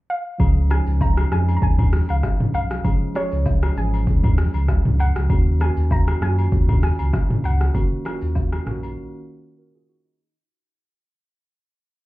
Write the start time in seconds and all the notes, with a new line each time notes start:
0.10 F5
0.38 C#2 F3 G#3 C#4 G#4, kick, high agogo, shaker
0.69 F3 G#3 C#4 D#4 G#5, cross-stick, high agogo, shaker
0.86 C#2, shaker
1.01 A#5, kick, low woodblock, shaker
1.17 cross-stick, high agogo
1.30 F2 F3 G#3 C#4 G4 G#5, cross-stick, shaker
1.39 G#4
1.48 high agogo, shaker
1.57 A#5
1.62 D#2 G#5, kick, shaker
1.79 kick, mid tom, high agogo
1.93 cross-stick, open hi-hat, shaker
2.09 C#2 F5, high agogo, shaker
2.23 kick, cross-stick, low woodblock, shaker
2.40 mid tom
2.54 B1 F5, high agogo, shaker
2.71 cross-stick, shaker
2.83 F3 G#3 C#4 G#4, kick, high agogo, shaker
3.14 F3 G#3 C#4 G#4 C#5, cross-stick, high agogo, shaker
3.32 C#2, shaker
3.46 kick, low woodblock, shaker
3.63 cross-stick, high agogo
3.75 G#1 E3 G#3 C#4 G#4 G#5, shaker
3.82 F3
3.94 high agogo, shaker
4.07 D#2, kick, shaker
4.24 kick, mid tom, high agogo
4.38 cross-stick, open hi-hat, shaker
4.54 C#2, high agogo, shaker
4.68 kick, cross-stick, low woodblock, shaker
4.85 C#2, mid tom
4.99 F#5, high agogo, shaker
5.16 C#2, cross-stick, shaker
5.28 D#2 D#3 A#3 C#4 F#4, kick, high agogo, shaker
5.59 D#3 A#3 C#4 F#4 G#5, cross-stick, high agogo, shaker
5.77 D#2, shaker
5.91 A#5, kick, low woodblock, shaker
6.08 cross-stick, high agogo
6.20 F#2 D#3 A#3 C#4 F4 G#5, cross-stick, shaker
6.29 F#4
6.39 high agogo, shaker
6.52 D#2, kick, shaker
6.69 kick, mid tom, high agogo
6.83 G#5, cross-stick, open hi-hat, shaker
6.99 C#2, high agogo, shaker
7.13 kick, cross-stick, low woodblock, shaker
7.30 mid tom
7.44 C#2 F#5, high agogo, shaker
7.61 cross-stick, shaker
7.73 D#3 A#3 C#4 F#4, kick, high agogo, shaker
8.04 D#3 A#3 C#4 F4, cross-stick, high agogo, shaker
8.13 F#4
8.21 D#2, shaker
8.35 kick, low woodblock, shaker
8.52 cross-stick, high agogo
8.65 A#1 D#3 A#3 C#4 F#4, cross-stick, mid tom, shaker
8.83 high agogo, shaker
9.59 F#4 A#4
9.75 F4 G#4
9.89 F#4
10.06 D#4